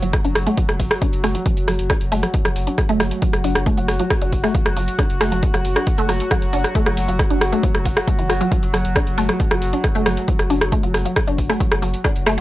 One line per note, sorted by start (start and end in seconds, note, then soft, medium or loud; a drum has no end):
0.00 0.13 F#1 medium
0.00 1.45 F#3 medium
0.00 0.09 F#3 medium
0.00 1.45 F#4 medium
0.00 closed hi-hat medium
0.13 kick loud
0.13 cross-stick medium
0.13 closed hi-hat medium
0.25 0.35 F#1 medium
0.25 0.34 D4 medium
0.25 closed hi-hat medium
0.35 0.46 F#1 loud
0.35 cross-stick medium
0.35 open hi-hat loud
0.47 0.53 A3 loud
0.47 closed hi-hat medium
0.57 0.67 F#3 medium
0.57 kick loud
0.57 closed hi-hat medium
0.69 0.79 F#1 medium
0.69 cross-stick medium
0.69 closed hi-hat medium
0.80 0.91 F#1 loud
0.80 0.86 F#3 medium
0.80 kick medium
0.80 open hi-hat loud
0.91 cross-stick loud
0.91 open hi-hat medium
1.02 1.11 D4 medium
1.02 kick loud
1.02 closed hi-hat medium
1.13 1.23 F#1 medium
1.13 closed hi-hat medium
1.24 1.35 F#1 loud
1.24 1.30 A3 loud
1.24 cross-stick medium
1.24 open hi-hat loud
1.35 1.44 F#3 medium
1.35 closed hi-hat medium
1.46 1.55 F#3 medium
1.46 12.41 F#3 medium
1.46 12.41 F#4 medium
1.46 kick loud
1.46 closed hi-hat medium
1.57 1.67 F#1 medium
1.57 closed hi-hat medium
1.68 1.78 F#1 loud
1.68 1.74 F#3 medium
1.68 cross-stick medium
1.68 open hi-hat loud
1.79 1.90 F#1 medium
1.79 closed hi-hat medium
1.90 1.99 D4 medium
1.90 kick loud
1.90 cross-stick medium
1.90 closed hi-hat medium
2.01 2.11 F#1 medium
2.01 closed hi-hat medium
2.12 2.23 F#1 loud
2.12 2.18 A3 loud
2.12 open hi-hat loud
2.23 2.32 F#3 medium
2.23 cross-stick medium
2.23 closed hi-hat medium
2.34 kick loud
2.34 closed hi-hat medium
2.45 2.55 F#1 medium
2.45 2.51 F#3 medium
2.45 cross-stick medium
2.45 closed hi-hat medium
2.56 2.67 F#1 loud
2.56 open hi-hat loud
2.67 2.76 D4 medium
2.67 closed hi-hat medium
2.78 kick loud
2.78 cross-stick medium
2.78 closed hi-hat medium
2.89 3.00 F#1 medium
2.89 2.95 A3 loud
2.89 closed hi-hat medium
3.00 3.11 F#1 loud
3.00 3.10 F#3 medium
3.00 cross-stick medium
3.00 open hi-hat loud
3.11 closed hi-hat medium
3.22 3.28 F#3 medium
3.22 kick loud
3.22 closed hi-hat medium
3.33 3.44 F#1 medium
3.33 cross-stick medium
3.33 closed hi-hat medium
3.44 3.55 F#1 loud
3.44 3.54 D4 medium
3.44 open hi-hat loud
3.55 3.66 F#1 medium
3.55 cross-stick medium
3.55 closed hi-hat medium
3.66 3.73 A3 loud
3.66 kick loud
3.66 closed hi-hat medium
3.77 3.88 F#1 medium
3.77 3.87 F#3 medium
3.77 closed hi-hat medium
3.88 3.99 F#1 loud
3.88 cross-stick medium
3.88 open hi-hat loud
4.00 4.06 F#3 medium
4.00 closed hi-hat medium
4.10 kick loud
4.10 cross-stick medium
4.10 closed hi-hat medium
4.22 4.32 F#1 medium
4.22 4.31 D4 medium
4.22 closed hi-hat medium
4.32 4.44 F#1 loud
4.32 kick medium
4.32 open hi-hat loud
4.44 4.50 A3 loud
4.44 cross-stick medium
4.44 open hi-hat medium
4.55 4.64 F#3 medium
4.55 kick loud
4.55 closed hi-hat medium
4.66 4.76 F#1 medium
4.66 cross-stick medium
4.66 closed hi-hat medium
4.77 4.88 F#1 loud
4.77 4.83 F#3 medium
4.77 open hi-hat loud
4.88 closed hi-hat medium
4.99 5.08 D4 medium
4.99 kick loud
4.99 cross-stick medium
4.99 closed hi-hat medium
5.10 5.20 F#1 medium
5.10 closed hi-hat medium
5.21 5.31 F#1 loud
5.21 5.27 A3 loud
5.21 cross-stick medium
5.21 open hi-hat loud
5.32 5.43 F#1 medium
5.32 5.41 F#3 medium
5.32 closed hi-hat medium
5.43 kick loud
5.43 closed hi-hat medium
5.54 5.64 F#1 medium
5.54 5.60 F#3 medium
5.54 cross-stick medium
5.54 closed hi-hat medium
5.65 5.76 F#1 loud
5.65 open hi-hat loud
5.76 5.85 D4 medium
5.76 cross-stick medium
5.76 closed hi-hat medium
5.87 kick loud
5.87 closed hi-hat medium
5.98 6.08 F#1 medium
5.98 6.04 A3 loud
5.98 closed hi-hat medium
6.09 6.20 F#1 loud
6.09 6.18 F#3 medium
6.09 cross-stick medium
6.09 open hi-hat loud
6.20 closed hi-hat medium
6.31 6.37 F#3 medium
6.31 kick loud
6.31 cross-stick medium
6.31 closed hi-hat medium
6.42 6.52 F#1 medium
6.42 closed hi-hat medium
6.53 6.64 F#1 loud
6.53 6.63 D4 medium
6.53 open hi-hat loud
6.64 cross-stick medium
6.64 closed hi-hat medium
6.75 6.81 A3 loud
6.75 kick loud
6.75 closed hi-hat medium
6.86 6.96 F#1 medium
6.86 6.96 F#3 medium
6.86 cross-stick medium
6.86 closed hi-hat medium
6.97 7.08 F#1 loud
6.97 open hi-hat loud
7.08 7.19 F#1 medium
7.08 7.14 F#3 medium
7.08 closed hi-hat medium
7.19 kick loud
7.19 cross-stick medium
7.19 closed hi-hat medium
7.30 7.41 F#1 medium
7.30 7.40 D4 medium
7.30 closed hi-hat medium
7.41 7.52 F#1 loud
7.41 cross-stick loud
7.41 open hi-hat loud
7.52 7.59 A3 loud
7.52 closed hi-hat medium
7.63 7.73 F#3 medium
7.63 kick loud
7.63 closed hi-hat medium
7.75 7.85 F#1 medium
7.75 cross-stick medium
7.75 closed hi-hat soft
7.85 7.96 F#1 loud
7.85 7.89 F#4 medium
7.85 kick medium
7.85 open hi-hat loud
7.97 8.03 F#4 medium
7.97 cross-stick loud
7.97 open hi-hat medium
8.07 8.11 A3 medium
8.07 kick loud
8.07 closed hi-hat medium
8.19 8.29 F#1 medium
8.19 8.22 E3 medium
8.19 closed hi-hat medium
8.29 8.41 F#1 loud
8.29 8.36 F#4 medium
8.29 cross-stick medium
8.29 open hi-hat loud
8.41 8.50 F#3 loud
8.41 closed hi-hat medium
8.52 8.61 F#3 medium
8.52 kick loud
8.52 closed hi-hat medium
8.63 8.73 F#1 medium
8.63 closed hi-hat medium
8.74 8.84 F#1 loud
8.74 8.80 F#3 medium
8.74 cross-stick medium
8.74 open hi-hat loud
8.85 8.96 F#1 medium
8.85 closed hi-hat soft
8.96 9.05 D4 medium
8.96 kick loud
8.96 cross-stick loud
8.96 closed hi-hat medium
9.07 9.17 F#1 medium
9.07 closed hi-hat soft
9.18 9.29 F#1 loud
9.18 9.24 A3 loud
9.18 open hi-hat loud
9.29 9.38 F#3 medium
9.29 cross-stick medium
9.29 closed hi-hat soft
9.40 kick loud
9.40 closed hi-hat medium
9.51 9.61 F#1 medium
9.51 9.57 F#3 medium
9.51 cross-stick loud
9.51 closed hi-hat soft
9.62 9.73 F#1 loud
9.62 open hi-hat loud
9.73 9.82 D4 medium
9.73 closed hi-hat medium
9.84 kick loud
9.84 cross-stick medium
9.84 closed hi-hat medium
9.95 10.05 F#1 medium
9.95 10.01 A3 loud
9.95 closed hi-hat medium
10.06 10.17 F#1 loud
10.06 10.15 F#3 medium
10.06 cross-stick loud
10.06 open hi-hat loud
10.17 closed hi-hat medium
10.28 10.34 F#3 medium
10.28 kick loud
10.28 closed hi-hat medium
10.39 10.50 F#1 medium
10.39 cross-stick medium
10.39 closed hi-hat soft
10.50 10.61 F#1 loud
10.50 10.60 D4 medium
10.50 open hi-hat loud
10.61 10.72 F#1 medium
10.61 cross-stick loud
10.61 closed hi-hat medium
10.72 10.78 A3 loud
10.72 kick loud
10.72 closed hi-hat medium
10.83 10.94 F#1 medium
10.83 10.93 F#3 medium
10.83 closed hi-hat soft
10.94 11.05 F#1 loud
10.94 cross-stick medium
10.94 open hi-hat loud
11.05 11.12 F#3 medium
11.05 closed hi-hat medium
11.16 kick loud
11.16 cross-stick loud
11.16 closed hi-hat medium
11.27 11.38 F#1 medium
11.27 11.37 D4 medium
11.27 closed hi-hat soft
11.38 11.49 F#1 loud
11.38 kick medium
11.38 open hi-hat loud
11.50 11.56 A3 loud
11.50 cross-stick medium
11.50 open hi-hat medium
11.60 11.70 F#3 medium
11.60 kick loud
11.60 closed hi-hat medium
11.72 11.82 F#1 medium
11.72 cross-stick loud
11.72 closed hi-hat medium
11.82 11.94 F#1 loud
11.82 11.89 F#3 medium
11.82 open hi-hat loud
11.94 closed hi-hat medium
12.04 12.14 D4 medium
12.04 kick loud
12.04 cross-stick medium
12.04 closed hi-hat medium
12.16 12.26 F#1 medium
12.16 closed hi-hat medium
12.26 12.37 F#1 loud
12.26 12.33 A3 loud
12.26 cross-stick loud
12.26 open hi-hat loud
12.38 12.41 F#3 medium